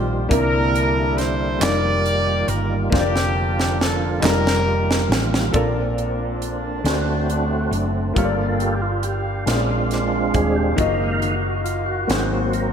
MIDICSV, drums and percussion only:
0, 0, Header, 1, 2, 480
1, 0, Start_track
1, 0, Key_signature, -2, "major"
1, 0, Tempo, 873362
1, 170, Time_signature, 6, 3, 24, 8
1, 6995, End_track
2, 0, Start_track
2, 0, Title_t, "Drums"
2, 170, Note_on_c, 9, 36, 98
2, 172, Note_on_c, 9, 42, 69
2, 225, Note_off_c, 9, 36, 0
2, 227, Note_off_c, 9, 42, 0
2, 414, Note_on_c, 9, 42, 37
2, 469, Note_off_c, 9, 42, 0
2, 650, Note_on_c, 9, 42, 43
2, 660, Note_on_c, 9, 38, 30
2, 705, Note_off_c, 9, 42, 0
2, 715, Note_off_c, 9, 38, 0
2, 891, Note_on_c, 9, 39, 89
2, 891, Note_on_c, 9, 42, 75
2, 897, Note_on_c, 9, 38, 91
2, 946, Note_off_c, 9, 39, 0
2, 946, Note_off_c, 9, 42, 0
2, 952, Note_off_c, 9, 38, 0
2, 1130, Note_on_c, 9, 42, 39
2, 1185, Note_off_c, 9, 42, 0
2, 1364, Note_on_c, 9, 42, 48
2, 1419, Note_off_c, 9, 42, 0
2, 1607, Note_on_c, 9, 36, 105
2, 1616, Note_on_c, 9, 38, 49
2, 1662, Note_off_c, 9, 36, 0
2, 1671, Note_off_c, 9, 38, 0
2, 1735, Note_on_c, 9, 38, 52
2, 1790, Note_off_c, 9, 38, 0
2, 1976, Note_on_c, 9, 38, 60
2, 2031, Note_off_c, 9, 38, 0
2, 2096, Note_on_c, 9, 38, 72
2, 2151, Note_off_c, 9, 38, 0
2, 2326, Note_on_c, 9, 39, 96
2, 2337, Note_on_c, 9, 38, 79
2, 2381, Note_off_c, 9, 39, 0
2, 2392, Note_off_c, 9, 38, 0
2, 2457, Note_on_c, 9, 38, 77
2, 2512, Note_off_c, 9, 38, 0
2, 2697, Note_on_c, 9, 38, 79
2, 2752, Note_off_c, 9, 38, 0
2, 2815, Note_on_c, 9, 38, 101
2, 2870, Note_off_c, 9, 38, 0
2, 2935, Note_on_c, 9, 38, 84
2, 2990, Note_off_c, 9, 38, 0
2, 3043, Note_on_c, 9, 42, 56
2, 3046, Note_on_c, 9, 36, 95
2, 3097, Note_off_c, 9, 42, 0
2, 3101, Note_off_c, 9, 36, 0
2, 3287, Note_on_c, 9, 42, 29
2, 3342, Note_off_c, 9, 42, 0
2, 3528, Note_on_c, 9, 42, 40
2, 3583, Note_off_c, 9, 42, 0
2, 3767, Note_on_c, 9, 42, 66
2, 3773, Note_on_c, 9, 38, 81
2, 3822, Note_off_c, 9, 42, 0
2, 3828, Note_off_c, 9, 38, 0
2, 4010, Note_on_c, 9, 42, 36
2, 4065, Note_off_c, 9, 42, 0
2, 4246, Note_on_c, 9, 42, 44
2, 4301, Note_off_c, 9, 42, 0
2, 4487, Note_on_c, 9, 36, 90
2, 4487, Note_on_c, 9, 42, 60
2, 4542, Note_off_c, 9, 36, 0
2, 4542, Note_off_c, 9, 42, 0
2, 4727, Note_on_c, 9, 42, 31
2, 4782, Note_off_c, 9, 42, 0
2, 4962, Note_on_c, 9, 42, 39
2, 5017, Note_off_c, 9, 42, 0
2, 5206, Note_on_c, 9, 42, 72
2, 5211, Note_on_c, 9, 38, 84
2, 5260, Note_off_c, 9, 42, 0
2, 5266, Note_off_c, 9, 38, 0
2, 5445, Note_on_c, 9, 42, 37
2, 5453, Note_on_c, 9, 38, 28
2, 5500, Note_off_c, 9, 42, 0
2, 5507, Note_off_c, 9, 38, 0
2, 5683, Note_on_c, 9, 42, 44
2, 5686, Note_on_c, 9, 36, 71
2, 5738, Note_off_c, 9, 42, 0
2, 5741, Note_off_c, 9, 36, 0
2, 5924, Note_on_c, 9, 42, 59
2, 5926, Note_on_c, 9, 36, 88
2, 5979, Note_off_c, 9, 42, 0
2, 5981, Note_off_c, 9, 36, 0
2, 6167, Note_on_c, 9, 42, 34
2, 6222, Note_off_c, 9, 42, 0
2, 6406, Note_on_c, 9, 42, 39
2, 6461, Note_off_c, 9, 42, 0
2, 6648, Note_on_c, 9, 42, 72
2, 6654, Note_on_c, 9, 38, 83
2, 6703, Note_off_c, 9, 42, 0
2, 6709, Note_off_c, 9, 38, 0
2, 6888, Note_on_c, 9, 42, 35
2, 6943, Note_off_c, 9, 42, 0
2, 6995, End_track
0, 0, End_of_file